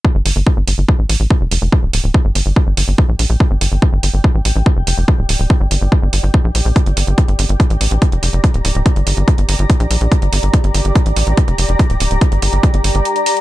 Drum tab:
HH |--o---o---o---o-|--o---o---o---o-|--o---o---o---o-|--o---o---o---o-|
BD |o---o---o---o---|o---o---o---o---|o---o---o---o---|o---o---o---o---|

HH |xxoxxxoxxxoxxxox|xxoxxxoxxxoxxxox|xxoxxxoxxxoxxxox|xxoxxxoxxxoxxxox|
BD |o---o---o---o---|o---o---o---o---|o---o---o---o---|o---o---o-------|